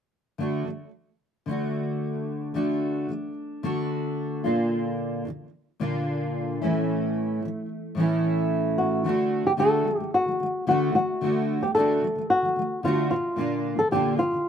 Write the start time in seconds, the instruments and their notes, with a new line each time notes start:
0.38 steel-string acoustic guitar D3 A3 D4 F#4
0.65 steel-string acoustic guitar D3 A3
1.46 steel-string acoustic guitar D3 A3 D4
1.51 steel-string acoustic guitar F#4
2.54 steel-string acoustic guitar D3 A3 D4 F#4
3.09 steel-string acoustic guitar D3 A3
3.63 steel-string acoustic guitar D3 A3 D4 F#4
4.44 steel-string acoustic guitar A#2 D3 A#3 D4 F4
5.25 steel-string acoustic guitar A#2 D3
5.80 steel-string acoustic guitar A#2 D3 A#3 D4 F4
6.62 steel-string acoustic guitar A2 E3 A3 C#4 E4
7.42 steel-string acoustic guitar A2 E3
7.95 steel-string acoustic guitar A2 E3 A3 C#4
8.00 steel-string acoustic guitar E4
8.78 nylon-string guitar F#4
9.04 steel-string acoustic guitar D3 A3 D4 F#4
9.44 steel-string acoustic guitar D3 A3, nylon-string guitar G4
9.57 steel-string acoustic guitar D3 A3 D4 F#4, nylon-string guitar A4
9.84 steel-string acoustic guitar D3 A3
9.97 steel-string acoustic guitar D3 A3
10.14 nylon-string guitar F#4
10.25 steel-string acoustic guitar D3 A3
10.40 steel-string acoustic guitar D3 A3
10.67 steel-string acoustic guitar D3 A3 D4 F#4, nylon-string guitar F#4
10.92 steel-string acoustic guitar D3 A3, nylon-string guitar F#4
11.21 steel-string acoustic guitar D3 A3 D4 F#4
11.61 steel-string acoustic guitar D3 A3, nylon-string guitar G4
11.75 steel-string acoustic guitar D3 A3 D4 F#4, nylon-string guitar A4
12.01 steel-string acoustic guitar D3 A3
12.15 steel-string acoustic guitar D3 A3
12.30 nylon-string guitar F#4
12.42 steel-string acoustic guitar D3 A3
12.56 steel-string acoustic guitar D3 A3
12.83 steel-string acoustic guitar D3 A3 D4 F#4, nylon-string guitar F4
13.10 steel-string acoustic guitar A#2 D3, nylon-string guitar F4
13.36 steel-string acoustic guitar A#2 D3 A#3 D4 F4
13.77 steel-string acoustic guitar A#2 D3, nylon-string guitar A4
13.91 steel-string acoustic guitar A#2 D3 A#3 D4 F4, nylon-string guitar G4
14.17 steel-string acoustic guitar A#2 D3, nylon-string guitar F4
14.31 steel-string acoustic guitar A#2 D3